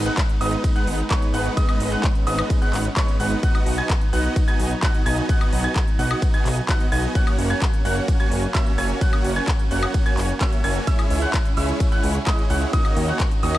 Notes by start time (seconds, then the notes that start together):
Already playing: G#3 B3 D#4
0.06 G#3 B3 D#4 B4 F#5 F#6
0.18 kick, clap, closed hi-hat, ride
0.29 closed hi-hat
0.41 G#1 G#3 B3 D#4 B4 D#5 D#6, open hi-hat
0.53 closed hi-hat
0.64 kick, closed hi-hat, ride
0.76 G#3 B3 D#4 B4 F#5 F#6, closed hi-hat
0.87 G#1, open hi-hat
0.99 closed hi-hat
1.11 G#3 B3 D#4 B4 C#5 C#6, kick, clap, closed hi-hat, ride
1.22 closed hi-hat
1.34 G#1 G#3 B3 D#4 B4 F#5 F#6, open hi-hat
1.46 closed hi-hat
1.57 G#3 B3 C#4 D#4 B4 D#5 D#6, kick, closed hi-hat, ride
1.69 closed hi-hat, high woodblock
1.80 G#1, open hi-hat
1.92 G#3 B3 D#4 B4 F#5 F#6, closed hi-hat
2.04 kick, clap, closed hi-hat, ride
2.15 closed hi-hat
2.27 G#1 G#3 B3 D#4 B4 D#5 D#6, open hi-hat
2.39 closed hi-hat, high woodblock
2.50 kick, closed hi-hat, ride
2.62 G#3 B3 D#4 B4 F#5 F#6, closed hi-hat
2.73 G#1, clap, open hi-hat
2.85 closed hi-hat
2.97 G#3 B3 D#4 B4 C#5 C#6, kick, clap, closed hi-hat, ride
3.08 closed hi-hat
3.20 G#1 G#3 B3 D#4 B4 F#5 F#6, open hi-hat
3.32 closed hi-hat
3.43 F#3 B3 D#4 F#4 D#5 F#5 F#6, kick, closed hi-hat, ride
3.55 closed hi-hat, high woodblock
3.66 B1, open hi-hat
3.78 B3 D#4 F#4 D#5 G#5 G#6, closed hi-hat
3.90 kick, clap, closed hi-hat, ride
4.01 closed hi-hat
4.13 B1 B3 D#4 F#4 D#5 F#5 F#6, open hi-hat
4.25 closed hi-hat
4.36 kick, closed hi-hat, ride
4.48 B3 D#4 F#4 D#5 G#5 G#6, closed hi-hat
4.60 B1, open hi-hat
4.71 closed hi-hat
4.83 B3 D#4 F#4 D#5 F#5 F#6, kick, clap, closed hi-hat, ride
4.95 closed hi-hat
5.06 B1 B3 D#4 F#4 D#5 G#5 G#6, open hi-hat
5.18 closed hi-hat
5.29 B3 D#4 F#4 D#5 F#5 F#6, kick, closed hi-hat, ride
5.41 closed hi-hat, high woodblock
5.52 B1, open hi-hat
5.64 B3 D#4 F#4 D#5 G#5 G#6, closed hi-hat
5.76 kick, clap, closed hi-hat, ride
5.88 closed hi-hat
5.99 B1 B3 D#4 F#4 D#5 F#5 F#6, open hi-hat
6.11 closed hi-hat, high woodblock
6.22 kick, closed hi-hat, ride
6.34 B3 D#4 F#4 D#5 G#5 G#6, closed hi-hat
6.46 B1, clap, open hi-hat
6.57 closed hi-hat
6.69 B3 D#4 F#4 D#5 F#5 F#6, kick, clap, closed hi-hat, ride
6.80 closed hi-hat
6.92 B1 B3 D#4 F#4 D#5 G#5 G#6, open hi-hat
7.04 closed hi-hat
7.15 A#3 C#4 F#4 C#5 F#5 F#6, kick, closed hi-hat, ride
7.27 closed hi-hat, high woodblock
7.39 F#1, open hi-hat
7.50 A#3 C#4 F#4 C#5 G#5 G#6, closed hi-hat
7.62 kick, clap, closed hi-hat, ride
7.74 closed hi-hat
7.85 F#1 A#3 C#4 F#4 C#5 F#5 F#6, open hi-hat
7.97 closed hi-hat
8.08 kick, closed hi-hat, ride
8.20 A#3 C#4 F#4 C#5 G#5 G#6, closed hi-hat
8.32 F#1, open hi-hat
8.43 closed hi-hat
8.55 A#3 C#4 F#4 C#5 E5 E6, kick, clap, closed hi-hat, ride
8.67 closed hi-hat
8.78 F#1 A#3 C#4 F#4 C#5 G#5 G#6, open hi-hat
8.90 closed hi-hat
9.01 A#3 C#4 F#4 C#5 F#5 F#6, kick, closed hi-hat, ride
9.13 closed hi-hat, high woodblock
9.24 F#1, open hi-hat
9.36 A#3 C#4 F#4 C#5 G#5 G#6, closed hi-hat
9.48 kick, clap, closed hi-hat, ride
9.59 closed hi-hat
9.71 F#1 A#3 C#4 F#4 C#5 F#5 F#6, open hi-hat
9.83 closed hi-hat, high woodblock
9.94 kick, closed hi-hat, ride
10.06 A#3 C#4 F#4 C#5 G#5 G#6, closed hi-hat
10.18 F#1, clap, open hi-hat
10.29 closed hi-hat
10.41 A#3 C#4 F#4 C#5 E5 E6, kick, clap, closed hi-hat, ride
10.52 closed hi-hat
10.64 F#1 A#3 C#4 F#4 C#5 G#5 G#6, open hi-hat
10.76 closed hi-hat
10.87 C#3 G#3 C#4 E4 G#4 C#5 E5 E6, kick, closed hi-hat, ride
10.99 closed hi-hat, high woodblock
11.10 C#2, open hi-hat
11.22 G#3 C#4 E4 C#5 F#5 F#6, closed hi-hat
11.34 kick, clap, closed hi-hat, ride
11.45 closed hi-hat
11.57 C#2 G#3 C#4 E4 C#5 E5 E6, open hi-hat
11.69 closed hi-hat
11.80 kick, closed hi-hat, ride
11.92 G#3 C#4 E4 C#5 F#5 F#6, closed hi-hat
12.04 C#2, open hi-hat
12.15 closed hi-hat
12.27 G#3 C#4 E4 C#5 D#5 D#6, kick, clap, closed hi-hat, ride
12.38 closed hi-hat
12.50 C#2 G#3 C#4 E4 C#5 F#5 F#6, open hi-hat
12.62 closed hi-hat
12.73 D#3 A#3 C#4 D#4 F#4 C#5 D#5 D#6, kick, closed hi-hat, ride
12.85 closed hi-hat, high woodblock
12.97 D#2, open hi-hat
13.08 A#3 D#4 F#4 C#5 F#5 F#6, closed hi-hat
13.20 kick, clap, closed hi-hat, ride
13.31 closed hi-hat
13.43 D#2 A#3 D#4 F#4 C#5 D#5 D#6, open hi-hat
13.55 closed hi-hat, high woodblock